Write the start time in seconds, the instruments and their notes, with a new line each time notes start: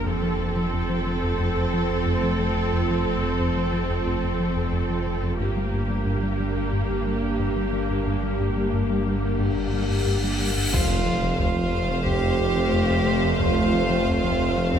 0.06 sub bass F1, analog synth bass F2, cello section F2, ambient pad A3 C4 F4 C5, viola section C4 A4
0.23 analog synth bass F3
0.39 analog synth bass F2
0.56 analog synth bass F3
0.73 analog synth bass F2
0.90 analog synth bass F3
1.07 analog synth bass F3
1.23 analog synth bass F2
1.40 analog synth bass F2
1.57 analog synth bass F2
1.74 analog synth bass F3
1.90 analog synth bass F2
2.07 analog synth bass F2
2.23 analog synth bass F3
2.40 analog synth bass F3
2.56 analog synth bass F2
2.73 analog synth bass F2
2.90 analog synth bass F3
3.06 analog synth bass F2
3.23 analog synth bass F3
3.40 analog synth bass F2
3.57 analog synth bass F3
3.73 analog synth bass F3
3.90 analog synth bass F2
4.07 analog synth bass F2
4.23 analog synth bass F2
4.40 analog synth bass F3
4.57 analog synth bass F2
4.73 analog synth bass F2
4.90 analog synth bass F3
5.07 analog synth bass F3
5.23 analog synth bass F2
5.40 sub bass G1, analog synth bass G2, cello section G2, viola section A#3 G4, ambient pad A#3 D4 G4 A#4
5.57 analog synth bass G3
5.73 analog synth bass G2
5.90 analog synth bass G3
6.06 analog synth bass G2
6.23 analog synth bass G3
6.40 analog synth bass G3
6.57 analog synth bass G2
6.73 analog synth bass G2
6.90 analog synth bass G2
7.07 analog synth bass G3
7.23 analog synth bass G2
7.39 analog synth bass G2
7.57 analog synth bass G3
7.73 analog synth bass G3
7.90 analog synth bass G2
8.07 analog synth bass G2, cymbal swell
8.23 analog synth bass G3
8.40 analog synth bass G2
8.57 analog synth bass G3
8.73 analog synth bass G2
8.90 analog synth bass G3
9.06 analog synth bass G3
9.23 analog synth bass G2
9.40 analog synth bass G2
9.57 analog synth bass G2
9.74 analog synth bass G3
9.91 analog synth bass G2
10.07 analog synth bass G2, cello D4
10.24 analog synth bass G3
10.40 analog synth bass G3
10.57 analog synth bass G2
10.73 tuba F1, sub bass F1, double bass section F1, cello section F2, analog synth bass F2, ambient pad A3 C4 F4 C5, french horn section A3 C4, viola section A3, cello F4, violin section C5 F5, taiko, impact
10.90 analog synth bass F2
11.07 analog synth bass F3
11.23 analog synth bass F3
11.40 analog synth bass F2, cello F4, taiko
11.56 analog synth bass F3
11.74 analog synth bass F2
11.90 analog synth bass F3
12.06 analog synth bass F2, cello G4, taiko
12.23 analog synth bass F2
12.40 analog synth bass F2
12.57 analog synth bass F3
12.73 analog synth bass F2
12.90 analog synth bass F2
13.07 analog synth bass F3
13.24 analog synth bass F2
13.40 analog synth bass F2, cello F4, taiko
13.57 analog synth bass F2
13.74 analog synth bass F3
13.90 analog synth bass F3
14.06 analog synth bass F2, taiko
14.24 analog synth bass F3
14.41 analog synth bass F2
14.57 analog synth bass F3
14.73 analog synth bass F2, cello C4, taiko